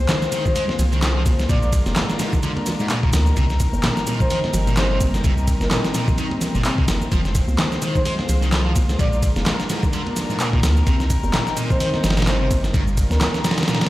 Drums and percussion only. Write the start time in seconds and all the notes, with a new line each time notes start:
0.09 snare, clap, ride, shaker
0.22 snare, shaker
0.31 ride, muted conga, shaker
0.45 kick, low conga, shaker
0.55 open hi-hat, shaker
0.68 snare, high conga
0.79 ride, low conga, shaker
0.92 ride, shaker
1.02 snare, clap, ride, shaker
1.26 kick, ride, high conga, shaker
1.39 snare, shaker
1.49 kick, ride, shaker
1.63 shaker
1.73 kick, ride, shaker
1.86 snare, high conga, shaker
1.96 snare, clap, ride, shaker
2.09 snare, shaker
2.19 snare, ride, muted conga, shaker
2.32 kick, low conga, shaker
2.43 ride, shaker
2.56 ride, high conga
2.66 snare, ride, low conga, shaker
2.79 shaker
2.89 clap, ride, shaker
3.03 kick
3.13 snare, ride, high conga, shaker
3.26 shaker
3.36 kick, ride, shaker
3.50 snare, shaker
3.60 kick, ride, shaker
3.73 high conga, shaker
3.83 snare, clap, ride, shaker
3.97 snare, shaker
4.07 ride, muted conga, shaker
4.20 kick, low conga, shaker
4.30 open hi-hat, shaker
4.44 snare, high conga
4.53 ride, low conga, shaker
4.67 ride, shaker
4.77 snare, clap, ride, shaker
5.00 kick, ride, high conga, shaker
5.14 snare, shaker
5.24 kick, ride, shaker
5.38 shaker
5.47 kick, ride, shaker
5.60 snare, high conga, shaker
5.71 snare, clap, ride, shaker
5.84 snare, shaker
5.94 snare, ride, muted conga, shaker
6.08 kick, low conga, shaker
6.18 ride, shaker
6.31 ride, high conga
6.41 snare, ride, low conga, shaker
6.55 shaker
6.65 clap, ride, shaker
6.78 kick
6.88 snare, ride, high conga, shaker
7.01 shaker
7.12 kick, ride, shaker
7.25 snare, shaker
7.35 kick, ride, shaker
7.48 high conga, shaker
7.58 snare, clap, ride, shaker
7.72 snare, shaker
7.82 ride, muted conga, shaker
7.95 kick, low conga, shaker
8.05 open hi-hat, shaker
8.18 snare, high conga
8.29 ride, low conga, shaker
8.42 ride, shaker
8.52 snare, clap, ride, shaker
8.76 kick, ride, high conga, shaker
8.89 snare, shaker
8.99 kick, ride, shaker
9.13 shaker
9.23 kick, ride, shaker
9.36 snare, high conga, shaker
9.46 snare, clap, ride, shaker
9.60 snare, shaker
9.69 snare, ride, muted conga, shaker
9.83 kick, low conga, shaker
9.93 ride, shaker
10.06 ride, high conga
10.16 snare, ride, low conga, shaker
10.30 shaker
10.40 clap, ride, shaker
10.53 kick
10.63 snare, ride, high conga, shaker
10.77 shaker
10.87 kick, ride, shaker
11.00 snare, shaker
11.10 kick, ride, shaker
11.23 high conga, shaker
11.33 snare, clap, ride, shaker
11.47 snare, shaker
11.56 ride, muted conga, shaker
11.70 kick, low conga, shaker
11.80 open hi-hat, shaker
11.94 snare, high conga
12.04 snare, ride, low conga, shaker
12.10 snare, ride
12.17 snare, ride, shaker
12.22 snare, ride
12.27 snare, clap, ride, shaker
12.51 kick, ride, high conga, shaker
12.64 snare, shaker
12.74 kick, ride, shaker
12.87 shaker
12.97 kick, ride, shaker
13.10 snare, high conga, shaker
13.21 snare, clap, ride, shaker
13.34 snare, muted conga, shaker
13.44 snare, ride, muted conga, shaker
13.51 snare, ride
13.58 snare, ride, low conga, shaker
13.63 snare, ride
13.68 snare, ride, shaker
13.74 snare, ride
13.81 snare, ride, high conga, shaker